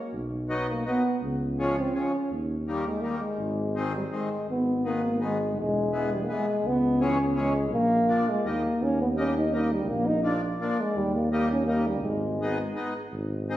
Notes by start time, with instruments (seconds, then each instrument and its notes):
Already playing: euphonium A#3
0.13 tuba B1
0.49 accordion F#3 B3 D#4
0.70 euphonium A#3
0.85 accordion F#3 B3 D#4, euphonium B3
1.22 tuba C#2
1.59 accordion F3 G#3 C#4
1.79 euphonium C4
1.95 accordion F3 G#3 C#4, euphonium C#4
2.31 tuba D#2
2.67 accordion D#3 G3 A#3
2.87 euphonium G#3
3.01 accordion D#3 G3 A#3, euphonium A#3
3.19 euphonium G#3
3.39 tuba G#1
3.75 accordion D#3 G#3 C4
3.97 euphonium G3
4.11 accordion D#3 G#3 C4, euphonium G#3
4.49 tuba G#1, euphonium B3
4.85 accordion D#3 G#3 B3, euphonium A#3
5.20 accordion D#3 G#3 B3, euphonium G#3
5.58 tuba E1, euphonium G#3
5.92 accordion E3 G#3 B3
6.13 euphonium G3
6.24 euphonium A#3
6.28 accordion E3 G#3 B3
6.32 euphonium G#3
6.64 tuba C#2, euphonium B3
7.00 accordion E3 G#3 C#4, euphonium C#4
7.35 accordion E3 G#3 C#4, euphonium G#3
7.72 tuba A#1, euphonium A#3
8.08 accordion F3 A#3 D4
8.30 euphonium G#3
8.45 tuba D#2, accordion G3 A#3 D#4, euphonium A#3
8.81 tuba D#2, euphonium C#4
9.01 euphonium B3
9.16 accordion G3 A#3 D#4, euphonium C#4
9.38 euphonium D#4
9.53 accordion G3 A#3 D#4, euphonium A#3
9.72 euphonium G3
9.89 tuba A#1, euphonium A#3
10.07 euphonium D#4
10.23 accordion F3 A#3 D4, euphonium D4
10.60 accordion F3 A#3 D4, euphonium A#3
10.81 euphonium G#3
10.96 tuba D#2, euphonium G3
11.15 euphonium A#3
11.31 accordion G3 A#3 D#4, euphonium A#3
11.51 euphonium C#4
11.67 accordion G3 A#3 D#4, euphonium A#3
11.87 euphonium G3
12.03 tuba G#1, euphonium G#3
12.41 accordion G#3 B3 D#4
12.75 accordion G#3 B3 D#4
13.13 tuba G#1
13.49 accordion G#3 C4 D#4